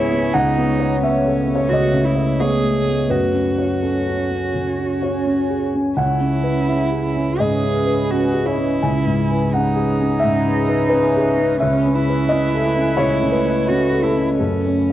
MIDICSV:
0, 0, Header, 1, 4, 480
1, 0, Start_track
1, 0, Key_signature, 4, "minor"
1, 0, Tempo, 688073
1, 236, Time_signature, 4, 2, 24, 8
1, 1671, Tempo, 713436
1, 5991, Tempo, 694444
1, 9351, Tempo, 722022
1, 10180, End_track
2, 0, Start_track
2, 0, Title_t, "Ambient pad"
2, 0, Program_c, 0, 92
2, 0, Note_on_c, 0, 59, 63
2, 0, Note_on_c, 0, 68, 63
2, 0, Note_on_c, 0, 73, 59
2, 216, Note_off_c, 0, 68, 0
2, 241, Note_on_c, 0, 57, 57
2, 2124, Note_off_c, 0, 59, 0
2, 2124, Note_off_c, 0, 73, 0
2, 2149, Note_off_c, 0, 57, 0
2, 2158, Note_on_c, 0, 61, 49
2, 2158, Note_on_c, 0, 80, 55
2, 2167, Note_on_c, 0, 73, 54
2, 4066, Note_off_c, 0, 73, 0
2, 4075, Note_off_c, 0, 61, 0
2, 4083, Note_on_c, 0, 61, 54
2, 4084, Note_on_c, 0, 71, 57
2, 4085, Note_on_c, 0, 68, 55
2, 4088, Note_off_c, 0, 80, 0
2, 5966, Note_off_c, 0, 61, 0
2, 5967, Note_off_c, 0, 68, 0
2, 5987, Note_off_c, 0, 71, 0
2, 5993, Note_on_c, 0, 68, 58
2, 5995, Note_on_c, 0, 61, 57
2, 5995, Note_on_c, 0, 71, 60
2, 7892, Note_off_c, 0, 68, 0
2, 7919, Note_on_c, 0, 57, 55
2, 9803, Note_off_c, 0, 71, 0
2, 9804, Note_off_c, 0, 61, 0
2, 9837, Note_on_c, 0, 61, 58
2, 9838, Note_on_c, 0, 73, 50
2, 10180, Note_off_c, 0, 57, 0
2, 10180, Note_off_c, 0, 61, 0
2, 10180, Note_off_c, 0, 73, 0
2, 10180, End_track
3, 0, Start_track
3, 0, Title_t, "Cello"
3, 0, Program_c, 1, 42
3, 0, Note_on_c, 1, 64, 69
3, 236, Note_on_c, 1, 63, 61
3, 247, Note_off_c, 1, 64, 0
3, 712, Note_off_c, 1, 63, 0
3, 717, Note_on_c, 1, 61, 50
3, 1181, Note_on_c, 1, 66, 58
3, 1192, Note_off_c, 1, 61, 0
3, 1425, Note_on_c, 1, 64, 45
3, 1435, Note_off_c, 1, 66, 0
3, 1668, Note_on_c, 1, 68, 58
3, 1678, Note_off_c, 1, 64, 0
3, 2146, Note_on_c, 1, 66, 39
3, 2157, Note_off_c, 1, 68, 0
3, 3840, Note_off_c, 1, 66, 0
3, 4085, Note_on_c, 1, 64, 46
3, 5040, Note_on_c, 1, 68, 45
3, 5050, Note_off_c, 1, 64, 0
3, 5513, Note_on_c, 1, 66, 46
3, 5523, Note_off_c, 1, 68, 0
3, 5753, Note_on_c, 1, 64, 46
3, 5763, Note_off_c, 1, 66, 0
3, 6482, Note_on_c, 1, 63, 55
3, 6493, Note_off_c, 1, 64, 0
3, 7921, Note_off_c, 1, 63, 0
3, 7925, Note_on_c, 1, 61, 58
3, 8158, Note_on_c, 1, 64, 64
3, 8168, Note_off_c, 1, 61, 0
3, 9353, Note_on_c, 1, 66, 56
3, 9363, Note_off_c, 1, 64, 0
3, 9583, Note_on_c, 1, 64, 46
3, 9593, Note_off_c, 1, 66, 0
3, 9827, Note_off_c, 1, 64, 0
3, 9830, Note_on_c, 1, 61, 39
3, 10180, Note_off_c, 1, 61, 0
3, 10180, End_track
4, 0, Start_track
4, 0, Title_t, "Grand piano"
4, 0, Program_c, 2, 0
4, 0, Control_c, 2, 64, 127
4, 0, Note_on_c, 2, 44, 49
4, 0, Note_on_c, 2, 59, 47
4, 0, Note_on_c, 2, 68, 51
4, 0, Note_on_c, 2, 71, 62
4, 0, Note_on_c, 2, 73, 85
4, 80, Note_off_c, 2, 59, 0
4, 80, Note_on_c, 2, 59, 43
4, 174, Note_off_c, 2, 68, 0
4, 208, Note_off_c, 2, 73, 0
4, 235, Note_on_c, 2, 78, 73
4, 239, Note_off_c, 2, 59, 0
4, 243, Note_on_c, 2, 37, 59
4, 248, Control_c, 2, 64, 0
4, 250, Note_off_c, 2, 71, 0
4, 252, Note_off_c, 2, 44, 0
4, 347, Control_c, 2, 64, 127
4, 401, Note_on_c, 2, 59, 44
4, 554, Note_on_c, 2, 73, 45
4, 653, Note_off_c, 2, 59, 0
4, 686, Note_off_c, 2, 78, 0
4, 709, Note_on_c, 2, 59, 43
4, 723, Note_on_c, 2, 76, 63
4, 809, Note_off_c, 2, 73, 0
4, 875, Note_on_c, 2, 69, 38
4, 966, Note_off_c, 2, 59, 0
4, 1027, Note_on_c, 2, 59, 37
4, 1051, Note_off_c, 2, 76, 0
4, 1085, Note_on_c, 2, 73, 59
4, 1128, Note_off_c, 2, 69, 0
4, 1166, Note_off_c, 2, 37, 0
4, 1189, Note_off_c, 2, 73, 0
4, 1193, Note_on_c, 2, 37, 42
4, 1207, Note_on_c, 2, 75, 63
4, 1284, Note_off_c, 2, 59, 0
4, 1345, Note_on_c, 2, 49, 37
4, 1501, Note_on_c, 2, 73, 37
4, 1604, Note_off_c, 2, 49, 0
4, 1652, Note_off_c, 2, 75, 0
4, 1666, Note_off_c, 2, 73, 0
4, 1670, Note_on_c, 2, 59, 39
4, 1676, Note_on_c, 2, 73, 57
4, 1828, Note_on_c, 2, 57, 33
4, 1922, Note_off_c, 2, 59, 0
4, 1978, Note_on_c, 2, 59, 29
4, 2082, Note_off_c, 2, 57, 0
4, 2121, Note_off_c, 2, 37, 0
4, 2122, Note_off_c, 2, 73, 0
4, 2141, Note_on_c, 2, 42, 39
4, 2141, Note_on_c, 2, 71, 49
4, 2142, Note_off_c, 2, 59, 0
4, 2159, Control_c, 2, 64, 0
4, 2274, Control_c, 2, 64, 127
4, 2297, Note_on_c, 2, 61, 28
4, 2470, Note_on_c, 2, 73, 31
4, 2562, Note_off_c, 2, 61, 0
4, 2602, Note_off_c, 2, 71, 0
4, 2632, Note_on_c, 2, 69, 35
4, 2638, Note_on_c, 2, 61, 29
4, 2729, Note_off_c, 2, 73, 0
4, 2792, Note_off_c, 2, 69, 0
4, 2802, Note_on_c, 2, 69, 27
4, 2893, Note_off_c, 2, 61, 0
4, 2952, Note_on_c, 2, 61, 25
4, 3056, Note_off_c, 2, 69, 0
4, 3086, Note_off_c, 2, 42, 0
4, 3115, Note_on_c, 2, 49, 31
4, 3211, Note_off_c, 2, 61, 0
4, 3276, Note_on_c, 2, 61, 25
4, 3372, Note_off_c, 2, 49, 0
4, 3438, Note_on_c, 2, 73, 32
4, 3533, Note_off_c, 2, 61, 0
4, 3596, Note_on_c, 2, 61, 30
4, 3695, Note_off_c, 2, 73, 0
4, 3757, Note_on_c, 2, 68, 26
4, 3856, Note_off_c, 2, 61, 0
4, 3922, Note_on_c, 2, 61, 26
4, 4018, Note_off_c, 2, 68, 0
4, 4074, Note_on_c, 2, 37, 41
4, 4074, Note_on_c, 2, 78, 59
4, 4083, Note_off_c, 2, 61, 0
4, 4096, Control_c, 2, 64, 0
4, 4198, Control_c, 2, 64, 127
4, 4230, Note_on_c, 2, 61, 29
4, 4389, Note_on_c, 2, 71, 34
4, 4492, Note_off_c, 2, 61, 0
4, 4531, Note_off_c, 2, 78, 0
4, 4555, Note_on_c, 2, 61, 32
4, 4559, Note_on_c, 2, 76, 45
4, 4651, Note_off_c, 2, 71, 0
4, 4710, Note_on_c, 2, 68, 30
4, 4813, Note_off_c, 2, 61, 0
4, 4876, Note_on_c, 2, 61, 29
4, 4969, Note_off_c, 2, 68, 0
4, 5006, Note_off_c, 2, 37, 0
4, 5009, Note_off_c, 2, 76, 0
4, 5036, Note_on_c, 2, 44, 30
4, 5037, Note_on_c, 2, 75, 56
4, 5130, Note_off_c, 2, 61, 0
4, 5287, Note_off_c, 2, 44, 0
4, 5352, Note_on_c, 2, 71, 39
4, 5514, Note_on_c, 2, 61, 33
4, 5604, Note_off_c, 2, 71, 0
4, 5664, Note_on_c, 2, 68, 32
4, 5723, Note_off_c, 2, 75, 0
4, 5747, Note_on_c, 2, 73, 47
4, 5769, Note_off_c, 2, 61, 0
4, 5829, Note_on_c, 2, 61, 30
4, 5926, Note_off_c, 2, 68, 0
4, 5974, Note_off_c, 2, 73, 0
4, 5997, Note_on_c, 2, 80, 53
4, 6002, Note_on_c, 2, 37, 47
4, 6005, Control_c, 2, 64, 0
4, 6089, Note_off_c, 2, 61, 0
4, 6113, Control_c, 2, 64, 127
4, 6158, Note_on_c, 2, 44, 33
4, 6334, Note_on_c, 2, 71, 36
4, 6410, Note_off_c, 2, 44, 0
4, 6447, Note_off_c, 2, 80, 0
4, 6489, Note_on_c, 2, 78, 59
4, 6500, Note_on_c, 2, 61, 35
4, 6577, Note_off_c, 2, 71, 0
4, 6642, Note_on_c, 2, 68, 33
4, 6740, Note_off_c, 2, 61, 0
4, 6812, Note_on_c, 2, 61, 36
4, 6891, Note_off_c, 2, 68, 0
4, 6926, Note_off_c, 2, 37, 0
4, 6929, Note_off_c, 2, 78, 0
4, 6944, Note_on_c, 2, 76, 68
4, 6974, Note_on_c, 2, 44, 38
4, 7054, Note_off_c, 2, 61, 0
4, 7122, Note_on_c, 2, 61, 39
4, 7215, Note_off_c, 2, 44, 0
4, 7285, Note_on_c, 2, 71, 42
4, 7369, Note_off_c, 2, 61, 0
4, 7397, Note_off_c, 2, 76, 0
4, 7415, Note_off_c, 2, 71, 0
4, 7425, Note_on_c, 2, 71, 70
4, 7449, Note_on_c, 2, 61, 47
4, 7609, Note_on_c, 2, 68, 43
4, 7700, Note_off_c, 2, 61, 0
4, 7765, Note_on_c, 2, 61, 38
4, 7864, Note_off_c, 2, 68, 0
4, 7891, Note_off_c, 2, 71, 0
4, 7914, Note_on_c, 2, 76, 67
4, 7924, Note_off_c, 2, 61, 0
4, 7931, Control_c, 2, 64, 0
4, 7931, Note_on_c, 2, 37, 57
4, 8028, Control_c, 2, 64, 127
4, 8093, Note_on_c, 2, 61, 42
4, 8256, Note_on_c, 2, 71, 44
4, 8340, Note_off_c, 2, 61, 0
4, 8367, Note_off_c, 2, 76, 0
4, 8391, Note_on_c, 2, 75, 73
4, 8417, Note_on_c, 2, 61, 43
4, 8499, Note_off_c, 2, 71, 0
4, 8567, Note_on_c, 2, 69, 47
4, 8658, Note_off_c, 2, 61, 0
4, 8720, Note_on_c, 2, 61, 42
4, 8812, Note_off_c, 2, 69, 0
4, 8838, Note_off_c, 2, 75, 0
4, 8846, Note_off_c, 2, 37, 0
4, 8863, Note_on_c, 2, 73, 75
4, 8875, Note_on_c, 2, 37, 45
4, 8968, Note_off_c, 2, 61, 0
4, 9039, Note_on_c, 2, 49, 43
4, 9088, Note_off_c, 2, 73, 0
4, 9104, Note_on_c, 2, 71, 64
4, 9189, Note_off_c, 2, 71, 0
4, 9200, Note_on_c, 2, 71, 44
4, 9291, Note_off_c, 2, 49, 0
4, 9364, Note_on_c, 2, 61, 43
4, 9451, Note_off_c, 2, 71, 0
4, 9513, Note_on_c, 2, 69, 35
4, 9579, Note_off_c, 2, 69, 0
4, 9588, Note_on_c, 2, 69, 54
4, 9611, Note_off_c, 2, 61, 0
4, 9671, Note_on_c, 2, 61, 32
4, 9806, Note_off_c, 2, 37, 0
4, 9812, Note_off_c, 2, 69, 0
4, 9829, Note_on_c, 2, 69, 56
4, 9831, Note_off_c, 2, 61, 0
4, 9834, Note_on_c, 2, 42, 46
4, 9842, Control_c, 2, 64, 0
4, 9949, Control_c, 2, 64, 127
4, 10003, Note_on_c, 2, 61, 33
4, 10180, Note_off_c, 2, 42, 0
4, 10180, Note_off_c, 2, 61, 0
4, 10180, Note_off_c, 2, 69, 0
4, 10180, End_track
0, 0, End_of_file